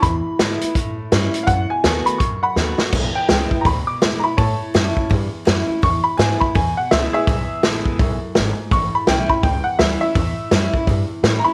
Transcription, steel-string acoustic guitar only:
0.03 E2
0.40 D3 G#3 B3 E4
0.63 B3 E4
0.77 A2
1.12 E3 G3 C#4 E4
1.35 C#4 E4
1.50 B2
1.85 D#3 A3 B3 F#4
2.21 F#2
2.57 D#3 A3 B3 F#4
2.79 B3 F#4
2.95 E2
3.30 D3 G#3 B3 E4
3.52 B3 E4
3.66 B2
4.02 D3 G#3 B3 E4
4.23 B3 E4
4.74 E3 G3 C#4 E4
4.95 C#4 E4
5.10 E2
5.45 E3 G3 C#4 E4
5.67 C#4 E4
5.82 E2
6.18 D3 G#3 B3 E4
6.41 B3 E4
6.55 B2
6.91 D3 G#3 B3 E4
7.14 B3 E4
7.29 E2
7.63 D3 G#3 B3 E4
8.00 F#2
8.37 G#2
8.73 A2
9.10 E3 G3 C#4 E4
9.29 C#4 E4
9.44 E2
9.80 E3 G3 C#4 E4
10.02 C#4 E4
10.16 A2
10.51 E3 G3 C#4 E4
10.75 C#4 E4
10.89 E2
11.24 E3 G3 C#4 E4
11.46 C#4 E4

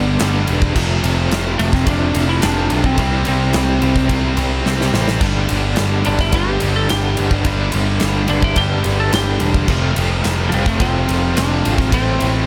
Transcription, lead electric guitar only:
Already playing: B3
1.59 A3
1.74 C4
1.87 D4
2.29 E4
2.43 D4
2.86 C4
3.28 C4
6.07 D4
6.21 E4
6.34 G4
6.76 A4
6.90 G4
8.30 D4
8.44 E4
8.57 G4
9.00 A4
9.14 G4
10.49 F3
10.54 G3
10.67 A3
10.81 C4
11.37 D4
11.82 C4
11.94 C4

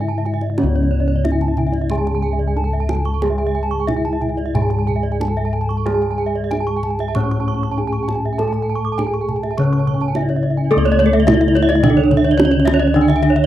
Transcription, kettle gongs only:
Already playing: G#2
0.58 C#4
0.63 C#2
1.25 D4
2.56 D4
3.23 G#4
3.88 D4
4.54 G#2
5.20 D4
5.86 G#4
6.52 D4
7.16 A2
7.78 D4
8.39 A4
8.99 D4
9.58 C#3
10.15 D4
10.71 A4
10.77 C#2
11.27 D4
12.39 D4
12.94 D4

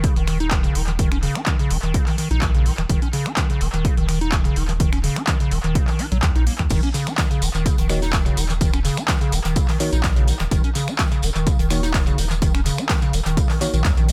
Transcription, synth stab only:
7.90 A#3 D#4 F#4 C#5
9.80 A#3 D#4 F#4 C#5
11.71 A#3 D#4 F#4 C#5
13.61 A#3 D#4 F#4 C#5

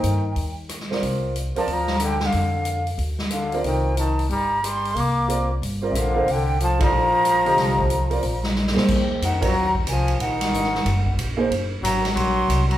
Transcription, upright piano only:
0.90 C4 F4 A#4 D5
1.56 C4 F4 A#4 D5
3.53 C4 F4 A#4 D5
5.28 C4 F4 A#4 D5
5.82 C4 F4 A#4 D5
6.14 C4 F4 A#4 C5
6.79 D#4 A4 D5 F5
7.45 D3 G4 C5 D#5
8.10 C4 F4 A#4 D5
8.74 A#3 D#4 G#4 C5
9.40 C4 F4 A#4 C#5
11.37 A#3 D#4 G#4 C5

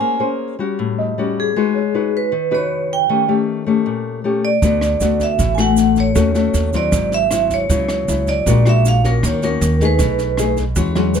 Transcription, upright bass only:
4.62 D2
5.00 D2
5.39 A1
6.16 D#2
6.54 D#2
6.92 G#1
7.70 C#2
8.08 C#2
8.46 A#1
9.23 D#2
9.61 D#2
10.00 B1
10.76 E2

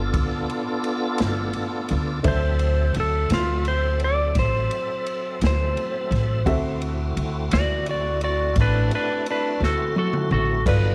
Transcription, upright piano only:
Already playing: B4
2.23 D4 A4 C5 E5
6.46 C4 F#4 A4 E5
10.66 F4 A4 B4 D5

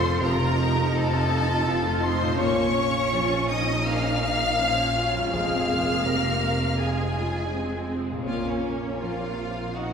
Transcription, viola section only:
0.03 A3 F4
0.21 F3 C4
0.41 A3 F4
0.58 F3 C4
0.76 A3 F4
0.95 F3 C4
1.12 A3 F4
1.31 F3 C4
1.50 A3 F4
1.68 F3 C4
1.85 A3 F4
2.04 F3 C4
2.22 A3 F4
2.40 A#3 C#4
2.77 C#4
3.87 A#3 C#4
4.23 A#3
4.60 F3 C#4
4.97 F#3
5.34 G#3 C4
5.70 A#3
6.06 C4
6.80 G#3 C4
7.17 C#3
7.54 G#3 C4
8.28 A#3 C#4
9.02 C3
9.75 A#3 D#4

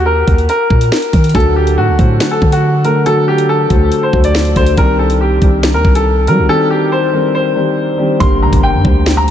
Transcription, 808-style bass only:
Already playing: D#2
0.28 D#2
0.70 A#2
1.13 D#3
1.35 D2
1.77 A2
1.88 D2
1.99 A2
2.42 D3
3.70 D2
4.13 D2
4.56 D2
4.78 C2
5.42 C2
5.74 D#2
5.85 C2
6.28 G3
6.38 C2
8.21 G1
8.42 D2
8.53 G1
8.74 G2
8.85 D2

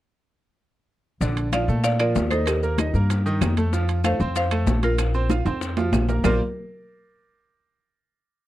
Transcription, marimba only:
1.53 D5 F5
1.84 D5 F5
2.00 A#4 D5
2.31 A4 C5
2.46 G4 A#4
4.05 C5 F5
4.37 C5 F5
4.84 F4 A#4
6.24 A#4

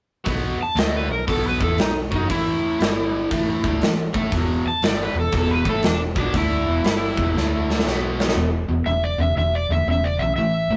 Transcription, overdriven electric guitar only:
0.24 B2 F#3 B3
0.59 muted overdriven electric guitar stroke
0.76 D3 A3 D4
1.09 B2 F#3
1.27 B2 F#3 B3
1.59 E3 B3 E4
1.78 B2 F#3
2.11 F#3 C#4 F#4
2.29 A2 E3 A3
2.80 G2 D3 G3
3.31 A2 E3 A3
3.63 D3 A3 D4
3.81 A2 E3
4.13 A3 E4 A4
4.33 E2 B2 E3
4.66 muted overdriven electric guitar stroke
4.83 G2 D3 G3
5.15 E2 B2
5.32 E2 B2 E3
5.65 A2 E3 A3
5.83 E2 B2
6.15 B2 F#3 B3
6.34 D3 A3 D4
6.67 E2 B2 E3
6.84 G2 D3 G3
7.17 E2 B2 E3
7.34 D3 A3 D4
7.84 B2 F#3 B3
8.35 E2 B2
8.69 E2 B2
8.86 E2 C#3
9.19 E2 C#3
9.37 E2 D3
9.71 E2 D3
9.88 E2 C#3
10.20 E2 C#3
10.38 A2 E3
10.71 A2 E3

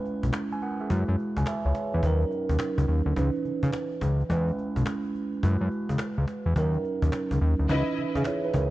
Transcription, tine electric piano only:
Already playing: G#3 C#4 E4 B4
0.53 B4 G#5
0.62 A#4 F#5
0.80 G#4 E5
0.90 G#3 E4 F#4 B4
1.38 B4 G#5
1.48 G#4 E5
1.66 E4 C#5
1.94 D#4 B4
2.03 E3 C#4 D#4 A#4
2.10 F#3
3.16 E3 C#4 D#4 B4
4.29 G#3 C#4 E4 B4
5.43 G#3 E4 F#4 B4
6.56 F#3 C#4 D#4 A#4
7.70 D#3 C#4 D#4 B4
7.76 E3
8.17 G#4 E5
8.27 E4 C#5
8.45 D#4 B4
8.55 C#4 A#4

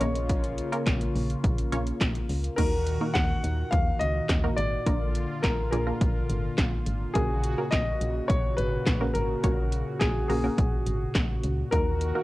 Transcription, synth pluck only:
0.01 A#3 C#4 F4 A#4
0.72 A#3 C#4 F4 A#4
1.72 A#3 C#4 F4 C#5
2.58 A#3 D#4 F#4 A#4
3.01 A#3 D#4 F#4 A#4
4.44 A#3 D#4 F#4 A#4
4.87 A#3 D4 F4 A#4
5.72 A#3 D4 F4 G#4
5.87 A#3 D4 F4 A#4
7.15 A#3 C#4 F#4 A#4
7.58 A#3 C#4 F#4 A#4
9.01 A#3 C#4 F#4 A#4
9.44 A#3 C#4 F#4 C#5
10.29 A#3 C#4 F#4 A#4
10.44 A#3 C#4 F#4 A#4
11.72 A#3 D#4 F#4 A#4
12.15 A#3 D#4 F#4 A#4

